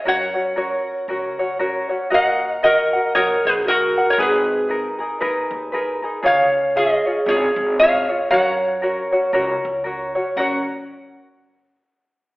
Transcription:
0.04 0.72 F#2 medium
0.04 0.36 C#4 medium
0.04 0.34 F#4 medium
0.04 0.36 A#4 medium
0.04 1.55 C#5 medium
0.04 0.33 C#5 medium
0.08 1.58 C#5 medium
0.08 1.58 F#5 loud
0.34 0.55 C#4 soft
0.34 0.56 F#4 soft
0.34 0.56 C#5 soft
0.56 1.08 C#4 medium
0.56 1.09 F#4 medium
0.56 1.08 A#4 medium
0.56 1.09 C#5 medium
1.08 1.75 C#2 medium
1.08 1.39 C#4 medium
1.08 1.39 F#4 medium
1.08 1.39 A#4 medium
1.08 1.38 C#5 medium
1.39 1.58 C#4 soft
1.39 1.59 F#4 medium
1.39 1.59 C#5 medium
1.59 1.90 C#4 medium
1.59 1.89 F#4 medium
1.59 1.90 A#4 medium
1.59 1.88 C#5 medium
1.89 2.11 C#4 soft
1.89 2.10 F#4 soft
1.89 2.11 C#5 medium
2.10 2.78 D#2 loud
2.10 2.62 F#4 medium
2.10 2.63 A#4 medium
2.10 2.62 D#5 medium
2.10 2.60 D#5 loud
2.10 2.63 F#5 medium
2.10 2.52 F#5 loud
2.15 2.61 D#5 medium
2.52 2.66 F5 loud
2.63 2.94 F#4 medium
2.63 3.11 A#4 medium
2.63 2.93 A#4 medium
2.63 3.13 A#4 medium
2.63 2.93 D#5 medium
2.63 3.14 D#5 medium
2.63 2.92 F#5 medium
2.93 3.14 F#4 soft
2.93 3.14 A#4 soft
2.93 3.15 F#5 medium
3.14 3.35 A#1 loud
3.14 3.67 F#4 medium
3.14 3.42 A#4 medium
3.14 3.68 A#4 medium
3.14 3.44 A#4 medium
3.14 3.46 C#5 medium
3.14 3.67 D#5 medium
3.14 3.67 F#5 medium
3.44 3.92 A#1 medium
3.44 3.54 G#4 medium
3.44 3.52 B4 medium
3.49 3.54 G#4 medium
3.64 4.03 F#4 medium
3.64 3.98 F#4 medium
3.64 3.97 D#5 medium
3.68 4.07 F#4 medium
3.68 4.09 A#4 medium
3.68 3.98 A#4 medium
3.68 3.96 F#5 medium
3.98 4.18 F#4 soft
3.98 4.18 A#4 soft
3.98 4.19 F#5 medium
4.06 4.17 A#4 medium
4.10 4.20 A#4 medium
4.10 4.20 C#5 medium
4.18 4.85 G#1 loud
4.18 4.68 D#4 medium
4.18 4.70 G#4 medium
4.18 4.69 G#4 loud
4.18 4.67 B4 medium
4.18 4.71 B4 medium
4.22 4.68 G#4 medium
4.68 5.00 D#4 medium
4.68 4.99 G#4 medium
4.68 4.97 A#4 medium
4.68 4.99 B4 medium
4.99 5.19 D#4 soft
4.99 5.20 G#4 soft
4.99 5.21 A#4 medium
5.21 5.41 D#2 loud
5.21 5.72 D#4 medium
5.21 5.73 G#4 medium
5.21 5.73 A#4 loud
5.21 5.71 B4 medium
5.51 5.98 D#2 loud
5.72 6.03 D#4 medium
5.72 6.02 G#4 medium
5.72 6.01 A#4 medium
5.72 6.03 B4 medium
6.02 6.23 D#4 soft
6.02 6.21 G#4 medium
6.02 6.22 A#4 medium
6.23 6.91 C#2 loud
6.23 6.76 C#4 medium
6.23 6.75 F4 medium
6.23 6.75 G#4 medium
6.23 6.78 C#5 medium
6.23 6.72 C#5 medium
6.23 6.76 F5 loud
6.27 6.74 C#5 medium
6.76 7.06 C#4 medium
6.76 7.06 F4 medium
6.76 7.24 G#4 medium
6.76 7.06 G#4 medium
6.76 7.25 G#4 medium
6.76 7.05 C#5 medium
6.76 7.29 D#5 medium
7.06 7.27 C#4 soft
7.06 7.27 F4 soft
7.06 7.27 C#5 medium
7.26 7.46 G#1 loud
7.26 7.79 C#4 medium
7.26 7.79 F4 medium
7.26 7.74 G#4 medium
7.26 7.78 G#4 medium
7.26 7.76 C#5 medium
7.26 7.81 C#5 medium
7.30 7.77 G#4 medium
7.56 8.04 G#1 loud
7.76 8.10 C#4 medium
7.76 8.09 G#4 medium
7.76 8.25 C#5 medium
7.76 8.30 F5 loud
7.80 8.10 F4 medium
7.80 8.08 C#5 medium
7.80 8.29 C#5 medium
8.09 8.30 C#4 soft
8.09 8.31 F4 soft
8.09 8.30 C#5 soft
8.29 8.97 F#2 loud
8.29 8.82 C#4 medium
8.29 8.82 F#4 medium
8.29 8.81 A#4 medium
8.29 10.10 C#5 medium
8.29 8.83 C#5 medium
8.29 10.11 F#5 loud
8.34 10.13 C#5 medium
8.82 9.12 C#4 medium
8.82 9.12 F#4 medium
8.82 9.12 A#4 medium
8.82 9.11 C#5 medium
9.12 9.32 C#4 soft
9.12 9.33 F#4 medium
9.12 9.33 C#5 medium
9.33 9.53 C#2 loud
9.33 9.84 C#4 medium
9.33 9.85 F#4 loud
9.33 9.84 A#4 medium
9.33 9.86 C#5 medium
9.65 10.12 C#2 loud
9.84 10.15 C#4 medium
9.84 10.15 F#4 medium
9.84 10.15 A#4 medium
9.84 10.14 C#5 medium
10.15 10.37 C#4 soft
10.15 10.37 F#4 medium
10.15 10.36 C#5 medium
10.36 10.65 F#1 medium
10.36 10.65 C#4 medium
10.36 10.61 C#4 medium
10.36 10.62 F#4 medium
10.36 10.61 A#4 medium
10.36 10.62 C#5 medium
10.36 10.65 F#5 medium

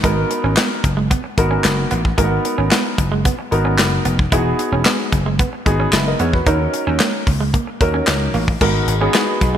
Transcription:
0.03 0.23 G#1 loud
0.03 0.15 G#3 medium
0.03 0.85 B3 medium
0.03 0.85 D#4 medium
0.03 0.85 F#4 medium
0.03 0.85 A#4 medium
0.03 kick loud
0.03 closed hi-hat medium
0.31 muted clean electric guitar stroke soft
0.31 closed hi-hat medium
0.44 0.54 G#1 medium
0.44 0.55 C#4 medium
0.57 0.68 B3 medium
0.57 snare loud
0.57 clap medium
0.57 closed hi-hat medium
0.84 1.13 F#1 medium
0.84 muted clean electric guitar stroke soft
0.84 kick medium
0.84 closed hi-hat medium
0.97 1.08 G#3 medium
1.11 1.22 B3 medium
1.11 kick loud
1.11 closed hi-hat medium
1.24 muted clean electric guitar stroke soft
1.37 1.57 G#1 medium
1.37 1.98 B3 medium
1.37 1.99 D#4 medium
1.37 1.99 F#4 medium
1.37 1.99 A#4 medium
1.37 kick loud
1.37 closed hi-hat medium
1.51 1.62 C#4 medium
1.64 1.84 F#1 medium
1.64 snare loud
1.64 clap medium
1.64 closed hi-hat loud
1.91 2.11 A1 medium
1.91 2.02 B3 medium
1.91 closed hi-hat medium
2.05 kick medium
2.17 2.37 G#1 loud
2.17 2.29 G#3 medium
2.17 2.24 A#3 medium
2.17 2.99 D#4 medium
2.17 2.99 F#4 medium
2.17 2.99 A#4 medium
2.17 kick loud
2.17 closed hi-hat medium
2.24 3.02 B3 medium
2.45 muted clean electric guitar stroke soft
2.45 closed hi-hat medium
2.58 2.68 G#1 loud
2.58 2.69 C#4 medium
2.71 2.82 B3 medium
2.71 snare loud
2.71 clap medium
2.71 closed hi-hat medium
2.98 3.27 F#1 medium
2.98 muted clean electric guitar stroke soft
2.98 kick medium
2.98 closed hi-hat medium
3.12 3.23 G#3 medium
3.25 3.36 B3 medium
3.25 kick medium
3.25 closed hi-hat medium
3.39 muted clean electric guitar stroke soft
3.51 3.79 G#1 medium
3.51 4.12 B3 medium
3.51 4.13 D#4 medium
3.51 4.13 F#4 medium
3.51 4.13 A#4 medium
3.51 closed hi-hat medium
3.65 3.76 C#4 medium
3.78 3.98 F#1 loud
3.78 snare loud
3.78 clap medium
3.78 closed hi-hat loud
4.05 4.25 F1 medium
4.05 4.16 B3 medium
4.05 closed hi-hat medium
4.19 kick medium
4.32 4.52 E1 loud
4.32 5.13 B3 medium
4.32 5.13 D#4 medium
4.32 4.43 E4 medium
4.32 5.14 F#4 medium
4.32 5.14 G#4 medium
4.32 kick loud
4.32 closed hi-hat medium
4.59 muted clean electric guitar stroke soft
4.59 closed hi-hat medium
4.72 4.82 E1 loud
4.72 4.83 C#4 medium
4.85 4.97 B3 medium
4.85 snare loud
4.85 clap medium
4.85 closed hi-hat medium
5.13 5.42 F#1 loud
5.13 muted clean electric guitar stroke soft
5.13 kick medium
5.13 closed hi-hat medium
5.26 5.37 G#3 medium
5.39 5.50 B3 medium
5.39 kick loud
5.39 closed hi-hat medium
5.53 muted clean electric guitar stroke soft
5.66 5.85 G#1 medium
5.66 6.27 B3 medium
5.66 6.27 D#4 medium
5.66 5.93 F#4 medium
5.66 5.93 G#4 loud
5.66 kick loud
5.66 closed hi-hat medium
5.80 5.91 C#4 medium
5.93 6.12 F#1 loud
5.93 6.06 B4 medium
5.93 6.06 E5 medium
5.93 snare loud
5.93 clap medium
5.93 closed hi-hat loud
6.07 6.20 A#4 medium
6.07 6.19 D#5 medium
6.19 6.39 E2 medium
6.19 6.31 B3 medium
6.19 6.33 G#4 medium
6.19 6.33 C#5 medium
6.19 closed hi-hat medium
6.33 6.45 F#4 medium
6.33 6.59 B4 medium
6.33 kick medium
6.46 6.66 D#2 loud
6.46 7.28 C#4 medium
6.46 7.28 D#4 medium
6.46 6.58 D#4 medium
6.46 7.28 F#4 medium
6.46 7.28 A#4 medium
6.46 kick loud
6.46 closed hi-hat medium
6.74 muted clean electric guitar stroke soft
6.74 closed hi-hat medium
6.87 6.97 D#2 loud
6.87 6.98 C#4 medium
7.00 7.11 A#3 medium
7.00 snare loud
7.00 clap medium
7.00 closed hi-hat medium
7.27 7.56 C#2 medium
7.27 muted clean electric guitar stroke soft
7.27 kick loud
7.27 open hi-hat medium
7.41 7.51 G#3 medium
7.54 7.65 A#3 medium
7.54 kick loud
7.54 closed hi-hat medium
7.67 muted clean electric guitar stroke soft
7.81 8.00 D#2 medium
7.81 8.41 C#4 medium
7.81 8.42 D#4 medium
7.81 8.42 F#4 medium
7.81 8.42 A#4 loud
7.81 kick medium
7.81 closed hi-hat medium
7.94 8.05 C#4 medium
8.07 8.27 C#2 medium
8.07 snare loud
8.07 clap medium
8.07 closed hi-hat medium
8.34 8.53 A1 medium
8.34 8.45 A#3 medium
8.34 open hi-hat medium
8.48 kick medium
8.61 8.80 G#1 loud
8.61 9.58 G#3 medium
8.61 8.72 G#3 medium
8.61 8.91 B3 medium
8.61 9.58 B3 medium
8.61 8.91 D#4 medium
8.61 9.58 D#4 medium
8.61 9.58 F#4 medium
8.61 8.92 F#4 medium
8.61 8.92 A#4 loud
8.61 kick loud
8.61 crash loud
8.87 9.07 G#1 loud
8.87 muted clean electric guitar stroke soft
8.87 closed hi-hat medium
9.01 9.58 B3 medium
9.01 9.12 C#4 medium
9.01 9.58 D#4 medium
9.01 9.58 F#4 medium
9.01 9.58 G#4 medium
9.14 9.25 B3 medium
9.14 snare loud
9.14 clap medium
9.14 closed hi-hat medium
9.41 9.58 B1 loud
9.41 muted clean electric guitar stroke soft
9.41 kick medium
9.41 closed hi-hat medium

